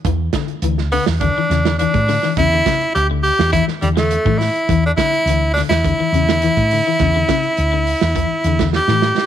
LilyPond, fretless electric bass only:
\new Staff \with { instrumentName = "Fretless electric bass" } { \clef bass \time 4/4 \key d \major \tempo 4 = 104 e,8 r8 d,8. e,8 r16 e,8. a,8 r16 | e,8 r8 d,8. e,8 r16 e,8. a,8 r16 | e,8 r8 d,8. e,8 r16 e,8. a,8 r16 | e,8 r8 d,8. e,8 r16 e,8. a,8 r16 | }